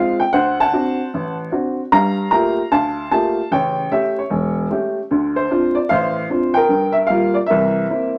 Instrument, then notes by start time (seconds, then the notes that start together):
upright piano
Already playing: G#3 C4 F4 F5
0.20 G5
0.33 D2 C5 F#5
0.60 F#5 A5
0.73 C4 D4 F#4
1.14 A1
1.51 C4 D4 F#4
1.92 G2 G3 F5 A#5
2.31 A3 A#3 F4 G4 A#5
2.72 D2 F5 A5
3.11 A3 A#3 F4 G4 A5
3.51 A1 C#3 C#5 G5
3.92 A3 C#4 G4 E5
4.18 C#5
4.30 E1
4.70 A3 C#4 G4
5.11 D2 D3
5.36 C5
5.51 C4 D4 F4
5.75 D5
5.89 A1 A2 C5 F5
6.30 C4 D4 F4
6.54 A#4 G5
6.69 G2
6.92 E5
7.07 G3 A#3 F5
7.11 F4
7.34 D5
7.46 A#4 E5
7.51 C2 E3
7.90 A#3 C4 E4